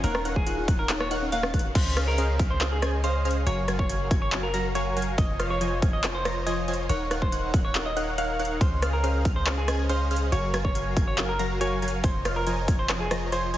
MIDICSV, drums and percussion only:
0, 0, Header, 1, 2, 480
1, 0, Start_track
1, 0, Key_signature, -5, "major"
1, 0, Tempo, 428571
1, 43, Time_signature, 4, 2, 24, 8
1, 15206, End_track
2, 0, Start_track
2, 0, Title_t, "Drums"
2, 42, Note_on_c, 9, 42, 88
2, 42, Note_on_c, 9, 51, 49
2, 154, Note_off_c, 9, 42, 0
2, 154, Note_off_c, 9, 51, 0
2, 165, Note_on_c, 9, 37, 83
2, 277, Note_off_c, 9, 37, 0
2, 283, Note_on_c, 9, 42, 68
2, 395, Note_off_c, 9, 42, 0
2, 405, Note_on_c, 9, 36, 61
2, 517, Note_off_c, 9, 36, 0
2, 522, Note_on_c, 9, 42, 88
2, 634, Note_off_c, 9, 42, 0
2, 762, Note_on_c, 9, 36, 103
2, 762, Note_on_c, 9, 42, 69
2, 874, Note_off_c, 9, 36, 0
2, 874, Note_off_c, 9, 42, 0
2, 1002, Note_on_c, 9, 39, 122
2, 1002, Note_on_c, 9, 42, 87
2, 1114, Note_off_c, 9, 39, 0
2, 1114, Note_off_c, 9, 42, 0
2, 1125, Note_on_c, 9, 37, 82
2, 1237, Note_off_c, 9, 37, 0
2, 1243, Note_on_c, 9, 42, 71
2, 1355, Note_off_c, 9, 42, 0
2, 1482, Note_on_c, 9, 42, 88
2, 1594, Note_off_c, 9, 42, 0
2, 1605, Note_on_c, 9, 37, 85
2, 1717, Note_off_c, 9, 37, 0
2, 1722, Note_on_c, 9, 36, 63
2, 1723, Note_on_c, 9, 42, 53
2, 1785, Note_off_c, 9, 42, 0
2, 1785, Note_on_c, 9, 42, 71
2, 1834, Note_off_c, 9, 36, 0
2, 1897, Note_off_c, 9, 42, 0
2, 1962, Note_on_c, 9, 36, 119
2, 1963, Note_on_c, 9, 42, 87
2, 1963, Note_on_c, 9, 49, 113
2, 1963, Note_on_c, 9, 51, 49
2, 2074, Note_off_c, 9, 36, 0
2, 2075, Note_off_c, 9, 42, 0
2, 2075, Note_off_c, 9, 49, 0
2, 2075, Note_off_c, 9, 51, 0
2, 2203, Note_on_c, 9, 37, 64
2, 2203, Note_on_c, 9, 42, 70
2, 2315, Note_off_c, 9, 37, 0
2, 2315, Note_off_c, 9, 42, 0
2, 2443, Note_on_c, 9, 42, 89
2, 2555, Note_off_c, 9, 42, 0
2, 2682, Note_on_c, 9, 36, 114
2, 2683, Note_on_c, 9, 42, 68
2, 2794, Note_off_c, 9, 36, 0
2, 2795, Note_off_c, 9, 42, 0
2, 2923, Note_on_c, 9, 37, 63
2, 2923, Note_on_c, 9, 39, 126
2, 2923, Note_on_c, 9, 42, 88
2, 3035, Note_off_c, 9, 37, 0
2, 3035, Note_off_c, 9, 39, 0
2, 3035, Note_off_c, 9, 42, 0
2, 3163, Note_on_c, 9, 37, 81
2, 3163, Note_on_c, 9, 42, 71
2, 3275, Note_off_c, 9, 37, 0
2, 3275, Note_off_c, 9, 42, 0
2, 3403, Note_on_c, 9, 42, 86
2, 3515, Note_off_c, 9, 42, 0
2, 3643, Note_on_c, 9, 42, 53
2, 3704, Note_off_c, 9, 42, 0
2, 3704, Note_on_c, 9, 42, 69
2, 3816, Note_off_c, 9, 42, 0
2, 3883, Note_on_c, 9, 42, 85
2, 3883, Note_on_c, 9, 51, 49
2, 3995, Note_off_c, 9, 42, 0
2, 3995, Note_off_c, 9, 51, 0
2, 4123, Note_on_c, 9, 37, 63
2, 4123, Note_on_c, 9, 42, 69
2, 4235, Note_off_c, 9, 37, 0
2, 4235, Note_off_c, 9, 42, 0
2, 4245, Note_on_c, 9, 36, 66
2, 4357, Note_off_c, 9, 36, 0
2, 4363, Note_on_c, 9, 42, 81
2, 4475, Note_off_c, 9, 42, 0
2, 4602, Note_on_c, 9, 36, 116
2, 4603, Note_on_c, 9, 42, 67
2, 4714, Note_off_c, 9, 36, 0
2, 4715, Note_off_c, 9, 42, 0
2, 4843, Note_on_c, 9, 39, 126
2, 4843, Note_on_c, 9, 42, 84
2, 4955, Note_off_c, 9, 39, 0
2, 4955, Note_off_c, 9, 42, 0
2, 5083, Note_on_c, 9, 42, 69
2, 5195, Note_off_c, 9, 42, 0
2, 5323, Note_on_c, 9, 42, 84
2, 5435, Note_off_c, 9, 42, 0
2, 5563, Note_on_c, 9, 42, 51
2, 5625, Note_off_c, 9, 42, 0
2, 5625, Note_on_c, 9, 42, 69
2, 5737, Note_off_c, 9, 42, 0
2, 5802, Note_on_c, 9, 36, 126
2, 5803, Note_on_c, 9, 42, 82
2, 5803, Note_on_c, 9, 51, 49
2, 5914, Note_off_c, 9, 36, 0
2, 5915, Note_off_c, 9, 42, 0
2, 5915, Note_off_c, 9, 51, 0
2, 6044, Note_on_c, 9, 37, 59
2, 6044, Note_on_c, 9, 42, 65
2, 6156, Note_off_c, 9, 37, 0
2, 6156, Note_off_c, 9, 42, 0
2, 6283, Note_on_c, 9, 42, 76
2, 6395, Note_off_c, 9, 42, 0
2, 6522, Note_on_c, 9, 36, 112
2, 6523, Note_on_c, 9, 42, 65
2, 6634, Note_off_c, 9, 36, 0
2, 6635, Note_off_c, 9, 42, 0
2, 6763, Note_on_c, 9, 37, 61
2, 6763, Note_on_c, 9, 39, 127
2, 6763, Note_on_c, 9, 42, 81
2, 6875, Note_off_c, 9, 37, 0
2, 6875, Note_off_c, 9, 39, 0
2, 6875, Note_off_c, 9, 42, 0
2, 7003, Note_on_c, 9, 37, 81
2, 7003, Note_on_c, 9, 42, 63
2, 7115, Note_off_c, 9, 37, 0
2, 7115, Note_off_c, 9, 42, 0
2, 7243, Note_on_c, 9, 42, 81
2, 7355, Note_off_c, 9, 42, 0
2, 7482, Note_on_c, 9, 42, 51
2, 7544, Note_off_c, 9, 42, 0
2, 7544, Note_on_c, 9, 42, 65
2, 7656, Note_off_c, 9, 42, 0
2, 7722, Note_on_c, 9, 42, 77
2, 7722, Note_on_c, 9, 51, 49
2, 7834, Note_off_c, 9, 42, 0
2, 7834, Note_off_c, 9, 51, 0
2, 7963, Note_on_c, 9, 37, 60
2, 7963, Note_on_c, 9, 42, 65
2, 8075, Note_off_c, 9, 37, 0
2, 8075, Note_off_c, 9, 42, 0
2, 8085, Note_on_c, 9, 36, 65
2, 8197, Note_off_c, 9, 36, 0
2, 8203, Note_on_c, 9, 42, 78
2, 8315, Note_off_c, 9, 42, 0
2, 8442, Note_on_c, 9, 36, 115
2, 8443, Note_on_c, 9, 42, 62
2, 8554, Note_off_c, 9, 36, 0
2, 8555, Note_off_c, 9, 42, 0
2, 8683, Note_on_c, 9, 39, 127
2, 8683, Note_on_c, 9, 42, 80
2, 8795, Note_off_c, 9, 39, 0
2, 8795, Note_off_c, 9, 42, 0
2, 8923, Note_on_c, 9, 42, 64
2, 9035, Note_off_c, 9, 42, 0
2, 9163, Note_on_c, 9, 42, 77
2, 9275, Note_off_c, 9, 42, 0
2, 9403, Note_on_c, 9, 42, 49
2, 9465, Note_off_c, 9, 42, 0
2, 9465, Note_on_c, 9, 42, 62
2, 9577, Note_off_c, 9, 42, 0
2, 9642, Note_on_c, 9, 36, 121
2, 9643, Note_on_c, 9, 42, 79
2, 9643, Note_on_c, 9, 51, 54
2, 9754, Note_off_c, 9, 36, 0
2, 9755, Note_off_c, 9, 42, 0
2, 9755, Note_off_c, 9, 51, 0
2, 9883, Note_on_c, 9, 37, 65
2, 9883, Note_on_c, 9, 42, 66
2, 9995, Note_off_c, 9, 37, 0
2, 9995, Note_off_c, 9, 42, 0
2, 10123, Note_on_c, 9, 42, 79
2, 10235, Note_off_c, 9, 42, 0
2, 10362, Note_on_c, 9, 36, 113
2, 10363, Note_on_c, 9, 42, 66
2, 10474, Note_off_c, 9, 36, 0
2, 10475, Note_off_c, 9, 42, 0
2, 10602, Note_on_c, 9, 37, 64
2, 10602, Note_on_c, 9, 39, 121
2, 10602, Note_on_c, 9, 42, 78
2, 10714, Note_off_c, 9, 37, 0
2, 10714, Note_off_c, 9, 39, 0
2, 10714, Note_off_c, 9, 42, 0
2, 10842, Note_on_c, 9, 37, 77
2, 10842, Note_on_c, 9, 42, 67
2, 10954, Note_off_c, 9, 37, 0
2, 10954, Note_off_c, 9, 42, 0
2, 11082, Note_on_c, 9, 42, 77
2, 11194, Note_off_c, 9, 42, 0
2, 11323, Note_on_c, 9, 42, 49
2, 11384, Note_off_c, 9, 42, 0
2, 11384, Note_on_c, 9, 42, 66
2, 11496, Note_off_c, 9, 42, 0
2, 11563, Note_on_c, 9, 42, 79
2, 11563, Note_on_c, 9, 51, 53
2, 11675, Note_off_c, 9, 42, 0
2, 11675, Note_off_c, 9, 51, 0
2, 11803, Note_on_c, 9, 37, 67
2, 11803, Note_on_c, 9, 42, 64
2, 11915, Note_off_c, 9, 37, 0
2, 11915, Note_off_c, 9, 42, 0
2, 11925, Note_on_c, 9, 36, 60
2, 12037, Note_off_c, 9, 36, 0
2, 12043, Note_on_c, 9, 42, 80
2, 12155, Note_off_c, 9, 42, 0
2, 12282, Note_on_c, 9, 36, 104
2, 12282, Note_on_c, 9, 42, 67
2, 12394, Note_off_c, 9, 36, 0
2, 12394, Note_off_c, 9, 42, 0
2, 12522, Note_on_c, 9, 39, 116
2, 12522, Note_on_c, 9, 42, 80
2, 12522, Note_on_c, 9, 51, 44
2, 12634, Note_off_c, 9, 39, 0
2, 12634, Note_off_c, 9, 42, 0
2, 12634, Note_off_c, 9, 51, 0
2, 12762, Note_on_c, 9, 42, 67
2, 12874, Note_off_c, 9, 42, 0
2, 13002, Note_on_c, 9, 42, 81
2, 13114, Note_off_c, 9, 42, 0
2, 13242, Note_on_c, 9, 42, 53
2, 13304, Note_off_c, 9, 42, 0
2, 13304, Note_on_c, 9, 42, 67
2, 13416, Note_off_c, 9, 42, 0
2, 13482, Note_on_c, 9, 36, 116
2, 13482, Note_on_c, 9, 42, 87
2, 13482, Note_on_c, 9, 51, 50
2, 13594, Note_off_c, 9, 36, 0
2, 13594, Note_off_c, 9, 42, 0
2, 13594, Note_off_c, 9, 51, 0
2, 13723, Note_on_c, 9, 37, 64
2, 13723, Note_on_c, 9, 42, 70
2, 13835, Note_off_c, 9, 37, 0
2, 13835, Note_off_c, 9, 42, 0
2, 13962, Note_on_c, 9, 42, 85
2, 14074, Note_off_c, 9, 42, 0
2, 14202, Note_on_c, 9, 36, 102
2, 14203, Note_on_c, 9, 42, 69
2, 14314, Note_off_c, 9, 36, 0
2, 14315, Note_off_c, 9, 42, 0
2, 14443, Note_on_c, 9, 37, 68
2, 14443, Note_on_c, 9, 39, 114
2, 14443, Note_on_c, 9, 42, 81
2, 14555, Note_off_c, 9, 37, 0
2, 14555, Note_off_c, 9, 39, 0
2, 14555, Note_off_c, 9, 42, 0
2, 14683, Note_on_c, 9, 37, 90
2, 14683, Note_on_c, 9, 42, 69
2, 14795, Note_off_c, 9, 37, 0
2, 14795, Note_off_c, 9, 42, 0
2, 14922, Note_on_c, 9, 42, 80
2, 15034, Note_off_c, 9, 42, 0
2, 15163, Note_on_c, 9, 42, 54
2, 15206, Note_off_c, 9, 42, 0
2, 15206, End_track
0, 0, End_of_file